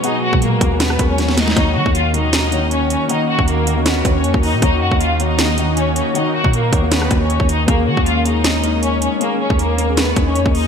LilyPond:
<<
  \new Staff \with { instrumentName = "Violin section" } { \time 4/4 \key ees \minor \tempo 4 = 157 <ees' ees''>8 <ges' ges''>8 <bes bes'>4 <ces' ces''>8. <des' des''>8. <ees' ees''>8 | <ees' ees''>8 <ges' ges''>8 <f' f''>8 <ees' ees''>4. <des' des''>8 <des' des''>8 | <ees' ees''>8 <ges' ges''>8 <bes bes'>4 <ces' ces''>8. <des' des''>8. <ees' ees''>8 | <ees' ees''>8 <ges' ges''>8 <f' f''>8 <ees' ees''>4. <des' des''>8 <des' des''>8 |
<ees' ees''>8 <ges' ges''>8 <bes bes'>4 <ces' ces''>8. <des' des''>8. <ees' ees''>8 | <bes bes'>8 <ges' ges''>8 <f' f''>8 <ees' ees''>4. <des' des''>8 <des' des''>8 | <bes bes'>8 <des' des''>8 <bes bes'>4 <ces' ces''>8. <des' des''>8. <ees' ees''>8 | }
  \new Staff \with { instrumentName = "Grand piano" } { \time 4/4 \key ees \minor <ces' ges' aes'>4 r8 <ces' ges' aes'>16 <ces' ges' aes'>8 r16 <ces' ges' bes'>4 r8 | <ees bes ges' des''>4 r8 <ees bes ges' bes'>8 r8 <ees bes ges' des''>4 r8 | <ees bes ges' ees''>4 r8 <ees bes ges' ees''>16 <ees bes ges' des''>8 r16 <ees bes ges' des''>4 r8 | <ees bes ges' des''>4 r8 <ees bes ges' des''>8 r8 <ees bes ges' ees''>4 r8 |
<ees bes ges' des''>4 r8 <ees bes ges' des''>16 <ees bes ges' des''>8 r16 <ees bes ges' des''>4 r8 | <bes des' aes'>4 r8 <bes des' aes'>8 r8 <bes des' ees'>4 r8 | <bes des' aes'>4 r8 <bes des' bes'>16 <bes des' aes'>8 r16 <bes des' ees'>4 r8 | }
  \new Staff \with { instrumentName = "Ambient pad" } { \time 4/4 \key ees \minor << { aes1 | des'1~ | des'1 | ees'1~ |
ees'1 | r1 | r1 | } \\ { <ces ges>1 | <ees bes ges'>1~ | <ees bes ges'>1~ | <ees bes ges'>1~ |
<ees bes ges'>1 | <aes des'>1~ | <aes des'>1 | } >> }
  \new Staff \with { instrumentName = "808-style bass" } { \clef bass \time 4/4 \key ees \minor r8. bes,8. ees,4 ees,4. | ees,8 ees16 ees,2. r16 | r8. ees,4.~ ees,16 ees,8 f,16 ees,8 bes,16 | ees,8 ges,16 ees,2. r16 |
r8. bes,8. ees,4 ees,8. ees,8. | ees,8 ees16 ees,2. r16 | r8. ees,4.~ ees,16 ees,8 f,16 ees,8 r16 | }
  \new DrumStaff \with { instrumentName = "Drums" } \drummode { \time 4/4 hh8. bd16 hh8 <hh bd>8 <hh sn>16 ss16 <hh bd>8 <hh sn>16 sn16 <hh sn>16 sn16 | <hh bd>8. bd16 hh8 hh8 <hh sn>8 hh8 hh8 hh8 | hh8. bd16 hh8 hh8 <hh sn>8 <hh bd>8 hh16 bd16 hho8 | <hh bd>8. bd16 hh8 hh8 <hh sn>8 hh8 hh8 hh8 |
hh8. bd16 hh8 <hh bd>8 <hh sn>16 ss16 <hh bd>8 hh16 bd16 hh8 | <hh bd>8. bd16 hh8 hh8 <hh sn>8 hh8 hh8 hh8 | hh8. bd16 hh8 hh8 <hh sn>8 <hh bd>8 hh16 bd16 hho8 | }
>>